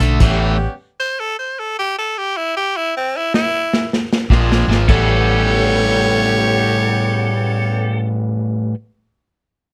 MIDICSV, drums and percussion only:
0, 0, Header, 1, 2, 480
1, 0, Start_track
1, 0, Tempo, 585366
1, 174, Time_signature, 4, 2, 24, 8
1, 7979, End_track
2, 0, Start_track
2, 0, Title_t, "Drums"
2, 2, Note_on_c, 9, 42, 53
2, 84, Note_off_c, 9, 42, 0
2, 166, Note_on_c, 9, 42, 80
2, 166, Note_on_c, 9, 49, 77
2, 169, Note_on_c, 9, 36, 104
2, 248, Note_off_c, 9, 42, 0
2, 248, Note_off_c, 9, 49, 0
2, 251, Note_off_c, 9, 36, 0
2, 2741, Note_on_c, 9, 38, 78
2, 2823, Note_off_c, 9, 38, 0
2, 3062, Note_on_c, 9, 38, 73
2, 3144, Note_off_c, 9, 38, 0
2, 3226, Note_on_c, 9, 38, 66
2, 3308, Note_off_c, 9, 38, 0
2, 3383, Note_on_c, 9, 38, 91
2, 3465, Note_off_c, 9, 38, 0
2, 3526, Note_on_c, 9, 36, 92
2, 3542, Note_on_c, 9, 38, 84
2, 3608, Note_off_c, 9, 36, 0
2, 3624, Note_off_c, 9, 38, 0
2, 3706, Note_on_c, 9, 38, 101
2, 3788, Note_off_c, 9, 38, 0
2, 3864, Note_on_c, 9, 38, 76
2, 3946, Note_off_c, 9, 38, 0
2, 4006, Note_on_c, 9, 36, 96
2, 4006, Note_on_c, 9, 49, 81
2, 4088, Note_off_c, 9, 36, 0
2, 4088, Note_off_c, 9, 49, 0
2, 7979, End_track
0, 0, End_of_file